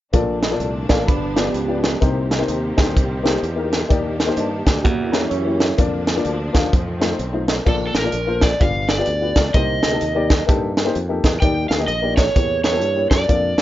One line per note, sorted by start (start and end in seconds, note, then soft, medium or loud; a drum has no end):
0.13 0.54 A#1 medium
0.13 0.86 A#2 medium
0.13 2.00 F3 medium
0.13 1.07 A3 medium
0.13 0.36 A#3 medium
0.13 1.07 A#3 medium
0.13 2.00 D4 medium
0.13 0.36 F4 medium
0.13 0.36 A4 medium
0.13 0.37 D5 medium
0.13 kick loud
0.13 closed hi-hat medium
0.43 snare loud
0.43 closed hi-hat medium
0.51 0.68 A#3 medium
0.51 0.69 F4 medium
0.51 0.69 A4 medium
0.51 0.69 D5 medium
0.60 0.85 C2 medium
0.60 closed hi-hat medium
0.89 1.05 A1 medium
0.89 1.07 A#3 medium
0.89 1.08 F4 medium
0.89 1.07 F4 medium
0.89 1.08 A4 medium
0.89 1.07 D5 medium
0.89 1.08 F5 medium
0.89 kick medium
0.89 snare loud
0.89 closed hi-hat medium
1.07 1.48 G1 medium
1.07 1.79 G2 medium
1.07 2.01 B3 medium
1.07 1.35 D4 medium
1.07 5.74 G4 medium
1.07 1.35 B4 medium
1.07 kick loud
1.07 closed hi-hat medium
1.35 1.50 B3 medium
1.35 1.99 B3 medium
1.35 1.51 F4 medium
1.35 1.99 G4 medium
1.35 1.51 G4 medium
1.35 1.51 D5 medium
1.35 snare loud
1.35 closed hi-hat medium
1.54 1.94 C#2 medium
1.54 closed hi-hat medium
1.68 1.88 B3 medium
1.68 1.88 F4 medium
1.68 1.89 G4 medium
1.68 1.89 D5 medium
1.84 snare loud
1.84 closed hi-hat medium
2.00 2.42 C2 medium
2.00 2.73 C3 medium
2.00 3.88 D#3 medium
2.00 2.24 A#3 medium
2.00 4.81 A#3 medium
2.00 3.88 C4 medium
2.00 2.24 D#4 medium
2.00 2.24 G4 medium
2.00 2.25 C5 medium
2.00 kick loud
2.00 closed hi-hat medium
2.31 snare loud
2.31 closed hi-hat medium
2.38 2.56 A#3 medium
2.38 2.57 D#4 medium
2.38 2.57 G4 medium
2.38 2.57 C5 medium
2.48 2.73 D#2 medium
2.48 closed hi-hat medium
2.77 2.94 D2 medium
2.77 2.97 A#3 medium
2.77 2.97 D#4 medium
2.77 2.98 G4 medium
2.77 2.98 C5 medium
2.77 kick medium
2.77 snare loud
2.77 closed hi-hat medium
2.96 3.36 C2 medium
2.96 kick loud
2.96 closed hi-hat medium
3.23 3.38 A#3 medium
3.23 3.38 D#4 medium
3.23 3.39 G4 medium
3.23 3.39 C5 medium
3.23 snare loud
3.23 closed hi-hat medium
3.43 3.83 E2 medium
3.43 closed hi-hat medium
3.55 3.76 A#3 medium
3.55 3.76 D#4 medium
3.55 3.77 G4 medium
3.55 3.77 A#4 medium
3.73 snare loud
3.73 closed hi-hat medium
3.89 4.30 D#2 medium
3.89 4.61 D#3 medium
3.89 4.83 D#3 medium
3.89 4.12 A#3 medium
3.89 4.83 D4 medium
3.89 4.12 D#4 medium
3.89 4.12 G4 medium
3.89 4.13 D5 medium
3.89 kick loud
3.89 closed hi-hat medium
4.20 snare loud
4.20 closed hi-hat medium
4.26 4.44 A#3 medium
4.26 4.45 D#4 medium
4.26 4.45 G4 medium
4.26 4.46 C5 medium
4.37 4.62 G2 medium
4.37 4.65 D#5 medium
4.37 4.64 A5 medium
4.37 closed hi-hat medium
4.66 4.85 D2 medium
4.66 5.11 D5 medium
4.66 5.10 G5 medium
4.66 kick medium
4.66 snare loud
4.66 closed hi-hat medium
4.84 5.25 E2 medium
4.84 5.56 E3 medium
4.84 5.78 E3 medium
4.84 5.78 A#3 medium
4.84 5.12 A#3 medium
4.84 5.78 C#4 medium
4.84 5.12 F#4 medium
4.84 kick loud
4.84 closed hi-hat medium
5.12 5.27 A#3 medium
5.12 5.30 C#4 medium
5.12 5.27 E4 medium
5.12 5.27 G4 medium
5.12 5.30 A#4 medium
5.12 5.28 C#5 medium
5.12 snare loud
5.12 closed hi-hat medium
5.30 5.71 F#2 medium
5.30 5.76 E4 medium
5.30 5.75 C#5 medium
5.30 closed hi-hat medium
5.45 5.65 A#3 medium
5.45 5.65 E4 medium
5.45 5.65 G4 medium
5.45 5.66 C#5 medium
5.60 snare loud
5.60 closed hi-hat medium
5.78 6.18 F2 medium
5.78 6.72 D3 medium
5.78 7.65 F3 medium
5.78 6.00 A#3 medium
5.78 6.72 A#3 medium
5.78 6.01 D4 medium
5.78 6.72 D4 medium
5.78 6.01 F4 medium
5.78 6.01 D5 medium
5.78 kick loud
5.78 closed hi-hat medium
6.07 snare loud
6.07 closed hi-hat medium
6.16 6.33 A#3 medium
6.16 6.34 D4 medium
6.16 6.34 F4 medium
6.16 6.34 D5 medium
6.25 6.50 D2 medium
6.25 closed hi-hat medium
6.53 6.70 D#2 medium
6.53 6.72 A#3 medium
6.53 6.72 D4 medium
6.53 6.72 F4 medium
6.53 6.73 F5 medium
6.53 kick medium
6.53 snare loud
6.53 closed hi-hat medium
6.73 7.13 F2 medium
6.73 7.66 D#3 medium
6.73 7.66 A3 medium
6.73 7.66 C4 medium
6.73 kick loud
6.73 closed hi-hat medium
7.00 7.15 A3 medium
7.00 7.15 D#4 medium
7.00 7.15 F4 medium
7.00 7.16 C5 medium
7.00 snare loud
7.00 closed hi-hat medium
7.19 7.59 B1 medium
7.19 closed hi-hat medium
7.32 7.53 A3 medium
7.32 7.53 D#4 medium
7.32 7.53 F4 medium
7.32 7.54 C5 medium
7.48 snare loud
7.48 closed hi-hat medium
7.65 7.91 A#1 medium
7.65 8.38 A#2 medium
7.65 7.88 A#3 medium
7.65 7.89 F4 medium
7.65 7.89 A4 medium
7.65 7.74 A4 medium
7.65 7.89 D5 medium
7.65 kick loud
7.65 crash medium
7.87 7.95 A4 medium
7.95 8.11 A1 medium
7.95 8.44 A#4 medium
7.95 snare loud
7.95 closed hi-hat medium
8.03 8.13 A#3 medium
8.03 8.14 F4 medium
8.03 8.14 A4 medium
8.03 8.15 D5 medium
8.12 8.53 A#1 medium
8.12 closed hi-hat medium
8.27 8.47 A#3 medium
8.27 8.47 F4 medium
8.27 8.47 A4 medium
8.27 8.48 C5 medium
8.41 8.61 D5 medium
8.41 kick loud
8.41 snare loud
8.41 closed hi-hat medium
8.59 9.01 G1 medium
8.59 9.32 G2 medium
8.59 8.82 B3 medium
8.59 8.83 F4 medium
8.59 8.83 G4 medium
8.59 8.83 D5 medium
8.59 8.90 F5 medium
8.59 kick loud
8.59 closed hi-hat medium
8.89 9.50 D5 medium
8.89 snare loud
8.89 closed hi-hat medium
8.97 9.07 B3 medium
8.97 9.08 F4 medium
8.97 9.08 G4 medium
8.97 9.08 D5 medium
9.06 9.32 D2 medium
9.06 closed hi-hat medium
9.21 9.41 B3 medium
9.21 9.41 F4 medium
9.21 9.41 G4 medium
9.21 9.42 B4 medium
9.36 9.51 C#2 medium
9.36 kick medium
9.36 snare loud
9.36 closed hi-hat medium
9.54 9.79 C2 medium
9.54 10.26 C3 medium
9.54 9.76 A#3 medium
9.54 9.77 D#4 medium
9.54 9.77 G4 medium
9.54 9.78 C5 medium
9.54 10.44 D#5 medium
9.54 kick loud
9.54 closed hi-hat medium
9.83 9.99 D2 medium
9.83 snare loud
9.83 closed hi-hat medium
9.91 10.01 A#3 medium
9.91 10.01 D#4 medium
9.91 10.02 G4 medium
9.91 10.02 A4 medium
10.01 10.42 D#2 medium
10.01 closed hi-hat medium
10.15 10.34 A#3 medium
10.15 10.35 D#4 medium
10.15 10.35 G4 medium
10.15 10.35 D5 medium
10.30 kick medium
10.30 snare loud
10.30 closed hi-hat medium
10.46 10.88 G2 medium
10.46 10.70 A#3 medium
10.46 10.70 D#4 medium
10.46 10.70 G4 medium
10.46 10.71 A4 medium
10.46 kick loud
10.46 closed hi-hat medium
10.77 snare loud
10.77 closed hi-hat medium
10.85 10.95 A#3 medium
10.85 10.95 D#4 medium
10.85 10.96 G4 medium
10.85 10.96 C5 medium
10.95 11.20 F2 loud
10.95 closed hi-hat medium
11.09 11.28 A#3 medium
11.09 11.29 D#4 medium
11.09 11.29 G4 medium
11.09 11.29 A4 medium
11.24 11.39 E2 medium
11.24 kick medium
11.24 snare loud
11.24 closed hi-hat medium
11.40 11.66 D#2 medium
11.40 12.13 D#3 medium
11.40 11.64 A#3 medium
11.40 11.64 D#4 medium
11.40 11.65 G4 medium
11.40 11.65 D5 medium
11.40 11.68 G5 medium
11.40 kick loud
11.40 closed hi-hat medium
11.69 11.86 D2 medium
11.69 11.74 F5 medium
11.69 snare loud
11.69 closed hi-hat medium
11.78 11.89 A#3 medium
11.78 11.89 D#4 medium
11.78 11.89 G4 medium
11.78 11.90 D#5 medium
11.88 12.28 A#1 medium
11.88 12.16 D#5 medium
11.88 closed hi-hat medium
12.02 12.22 A#3 medium
12.02 12.22 D#4 medium
12.02 12.23 G4 medium
12.02 12.23 D5 medium
12.17 12.60 C#5 medium
12.17 kick medium
12.17 snare loud
12.17 closed hi-hat medium
12.34 12.82 E2 medium
12.34 13.07 E3 medium
12.34 12.57 A#3 medium
12.34 12.58 E4 medium
12.34 12.58 G4 medium
12.34 12.58 C#5 medium
12.34 kick loud
12.34 closed hi-hat medium
12.64 13.10 C#5 medium
12.64 snare loud
12.64 closed hi-hat medium
12.72 12.82 A#3 medium
12.72 12.83 E4 medium
12.72 12.83 G4 medium
12.72 12.83 A4 medium
12.81 13.07 G2 medium
12.81 closed hi-hat medium
12.95 13.15 A#3 medium
12.95 13.16 E4 medium
12.95 13.16 G4 medium
12.95 13.16 C#5 medium
13.11 13.26 F#2 medium
13.11 13.62 D5 medium
13.11 kick medium
13.11 snare loud
13.11 closed hi-hat medium
13.28 13.54 F2 medium
13.28 13.51 A#3 medium
13.28 13.51 D4 medium
13.28 13.52 F4 medium
13.28 13.52 D5 medium
13.28 kick medium
13.28 closed hi-hat medium
13.57 13.62 G2 medium
13.57 snare loud
13.57 closed hi-hat medium